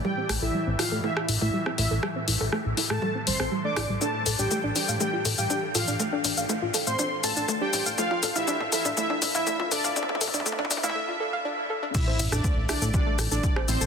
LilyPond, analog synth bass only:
\new Staff \with { instrumentName = "Analog synth bass" } { \clef bass \time 4/4 \key a \minor \tempo 4 = 121 r8 a,,16 a,,16 r16 a,,16 r16 a,16 r8 a,,16 a,,16 r8 a,,16 a,,16 | r8 a,,16 a,,16 r16 a,,16 r16 a,16 r8 g,,16 a,,16 r8 a,,16 a,,16 | r8 a,,16 a,,16 r16 a,,16 r16 a,16 r8 a,,16 a,,16 r8 a,,16 a,,16 | r8 a,,16 a,,16 r16 a,,16 r16 a,16 r8 a,,16 a,,16 r8 a,,16 a,,16 |
r8 a,,16 a,,16 r16 a,,16 r16 a,16 r8 a,,16 a,,16 r8 a,,16 a,,16 | r8 a,,16 a,,16 r16 a,,16 r16 a,16 r2 | r8 a,,16 a,,16 r16 a,,16 r16 a,16 r8 a,,16 a,,16 r8 a,,16 a,,16 | }